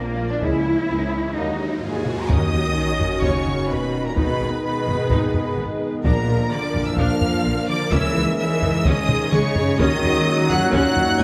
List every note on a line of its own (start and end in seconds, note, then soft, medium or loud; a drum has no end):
0.00 0.37 A#1 medium
0.00 0.42 F3 medium
0.00 0.31 A#3 medium
0.00 0.42 A#3 medium
0.00 0.19 D4 medium
0.00 0.43 F4 medium
0.00 0.19 A#4 soft
0.00 0.42 A#4 medium
0.00 0.19 F5 medium
0.00 riser medium
0.18 0.42 F4 medium
0.18 0.42 D5 medium
0.31 0.43 D4 medium
0.41 0.84 C#2 medium
0.41 0.59 E3 medium
0.41 1.36 E3 medium
0.41 1.36 G#3 medium
0.41 0.59 G#3 medium
0.41 0.64 C#4 soft
0.41 1.36 E4 medium
0.41 0.64 G#4 medium
0.41 0.59 G#4 medium
0.41 1.36 G#4 medium
0.41 0.58 C#5 medium
0.41 1.36 C#5 medium
0.41 0.64 E5 medium
0.41 taiko medium
0.65 0.89 E4 soft
0.65 0.89 C#5 soft
0.89 1.31 C#2 medium
0.89 1.13 C#4 soft
0.89 1.13 G#4 soft
0.89 1.12 E5 soft
1.13 1.36 E4 soft
1.13 1.36 C#5 soft
1.36 1.77 D#2 medium
1.36 2.30 F#3 medium
1.36 1.53 F#3 medium
1.36 2.30 A#3 medium
1.36 1.53 A#3 medium
1.36 1.58 D#4 soft
1.36 1.83 D#4 medium
1.36 2.28 F#4 medium
1.36 1.53 F#4 soft
1.36 1.58 F#4 soft
1.36 1.58 D#5 soft
1.36 2.28 D#5 medium
1.36 1.53 D#5 medium
1.59 1.83 D#4 soft
1.59 1.83 F#4 soft
1.59 1.83 A#4 medium
1.83 2.24 D#2 medium
1.83 2.27 G#2 medium
1.83 2.07 F#4 soft
1.83 2.05 G#4 medium
1.83 2.27 G#4 medium
1.83 2.06 D#5 soft
1.83 2.27 G#5 medium
2.06 2.30 D#4 medium
2.06 2.29 F#4 medium
2.06 2.30 A#4 soft
2.06 taiko low-mid soft
2.29 2.38 D#2 medium
2.29 6.00 D#3 medium
2.29 3.23 D#3 medium
2.29 6.01 D#3 medium
2.29 4.13 C#4 medium
2.29 2.52 C#4 medium
2.29 4.14 C#4 medium
2.29 4.13 F#4 medium
2.29 6.00 D#5 medium
2.29 3.24 D#5 medium
2.29 3.23 D#6 loud
2.29 taiko medium
2.29 sub drop medium
2.54 2.62 D#2 medium
2.54 2.62 F#3 soft
3.00 3.08 D#2 soft
3.00 3.08 F#3 medium
3.00 taiko low soft
3.23 3.31 D#2 medium
3.23 3.70 C#3 medium
3.23 3.45 C#4 medium
3.23 3.70 C#5 medium
3.23 3.70 C#6 medium
3.23 taiko medium
3.46 taiko low medium
3.70 3.79 D#2 medium
3.70 4.05 B2 medium
3.70 3.78 A#3 medium
3.70 4.05 B4 medium
3.70 4.05 B5 medium
4.05 4.17 A#2 medium
4.05 4.17 A#4 medium
4.05 4.17 A#5 medium
4.17 4.25 G#1 medium
4.17 4.63 B2 medium
4.17 6.01 G#3 medium
4.17 6.01 B3 medium
4.17 6.05 B3 medium
4.17 4.39 D#4 medium
4.17 6.01 D#4 medium
4.17 6.05 G#4 medium
4.17 6.01 B4 medium
4.17 4.63 B4 medium
4.17 4.62 B5 loud
4.17 taiko medium
4.40 4.49 G#1 medium
4.40 4.48 G#3 soft
4.64 5.56 B2 medium
4.64 5.56 B4 medium
4.64 5.56 B5 medium
4.87 4.96 G#1 medium
4.87 4.95 G#3 medium
4.87 taiko low soft
5.10 5.19 G#1 medium
5.10 5.33 D#4 medium
5.10 taiko medium
5.34 taiko low medium
5.58 5.66 G#1 medium
5.58 5.66 B3 medium
6.04 6.13 A#1 medium
6.04 7.88 A#2 medium
6.04 6.48 A#2 medium
6.04 7.88 F3 medium
6.04 7.92 F3 medium
6.04 7.92 A#3 medium
6.04 7.88 D4 medium
6.04 6.27 D4 medium
6.04 6.48 A#4 medium
6.04 7.92 A#4 medium
6.04 8.82 A#4 medium
6.04 7.92 D5 medium
6.04 6.48 A#5 loud
6.04 taiko loud
6.28 6.36 A#1 medium
6.28 6.36 F3 soft
6.51 6.87 D3 medium
6.51 6.87 D5 medium
6.51 6.87 D6 medium
6.75 6.83 A#1 medium
6.75 6.83 F3 medium
6.75 taiko low medium
6.85 6.98 E3 medium
6.85 6.98 E5 medium
6.85 6.99 E6 medium
6.97 7.07 A#1 medium
6.97 7.69 F3 medium
6.97 7.20 D4 medium
6.97 7.67 F5 medium
6.97 7.67 F6 loud
6.97 taiko medium
7.21 taiko low medium
7.45 7.53 A#1 medium
7.45 7.54 A#3 medium
7.68 7.92 D3 medium
7.68 7.92 D5 medium
7.68 7.92 D6 loud
7.92 8.00 C#2 loud
7.92 9.80 G#2 medium
7.92 8.38 E3 loud
7.92 9.80 G#3 medium
7.92 9.80 C#4 medium
7.92 8.14 C#4 medium
7.92 11.24 C#4 medium
7.92 9.80 G#4 medium
7.92 11.24 C#5 medium
7.92 8.37 E5 loud
7.92 8.37 E6 loud
7.92 taiko medium
8.16 8.24 C#2 medium
8.16 8.24 E3 medium
8.38 8.85 E3 loud
8.38 8.85 E5 loud
8.38 8.85 E6 loud
8.62 8.71 C#2 medium
8.62 8.71 E3 medium
8.62 taiko low medium
8.85 8.94 C#2 loud
8.85 9.33 D#3 medium
8.85 9.08 C#4 loud
8.85 9.80 G#4 medium
8.85 9.32 D#5 loud
8.85 9.33 D#6 loud
8.85 taiko medium
9.09 taiko low-mid medium
9.32 9.41 C#2 medium
9.32 9.80 C#3 loud
9.32 9.41 G#3 medium
9.32 9.80 C#5 loud
9.32 9.79 C#6 loud
9.32 taiko mid medium
9.56 taiko low loud
9.79 9.88 D#2 loud
9.79 11.24 A#2 medium
9.79 10.49 D#3 loud
9.79 11.24 F#3 medium
9.79 11.24 A#3 medium
9.79 10.02 C#4 medium
9.79 11.24 D#4 medium
9.79 11.24 D#4 loud
9.79 11.24 F#4 medium
9.79 10.50 D#5 loud
9.79 10.49 D#6 loud
9.79 taiko loud
10.03 10.11 D#2 medium
10.03 10.11 F#3 medium
10.50 10.58 D#2 medium
10.50 10.72 F#3 loud
10.50 10.58 F#3 medium
10.50 10.73 F#5 loud
10.50 10.73 F#6 loud
10.50 taiko low medium
10.73 10.82 D#2 loud
10.73 11.19 F#3 loud
10.73 10.95 C#4 loud
10.73 11.20 F#5 loud
10.73 11.20 F#6 loud
10.73 taiko medium
10.97 taiko low medium
11.20 11.24 D#2 medium
11.20 11.24 G#3 loud
11.20 11.24 A#3 medium
11.20 11.24 G#5 loud
11.20 11.24 G#6 loud